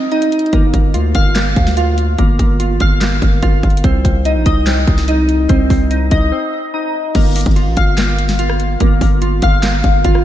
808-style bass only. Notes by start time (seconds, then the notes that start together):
0.53 G1
0.74 G1
0.94 D2
1.15 G1
1.56 D2
2.19 G1
2.39 G1
2.81 G1
3.22 G1
3.43 G1
3.63 G1
3.84 C2
4.05 C2
4.36 A#1
4.46 C2
4.87 C2
5.50 C2
5.70 C2
6.11 C2
7.15 G1
7.46 G1
7.67 A1
7.77 G1
8.81 G1
9.01 G1
9.42 G1
9.84 G1
10.05 G1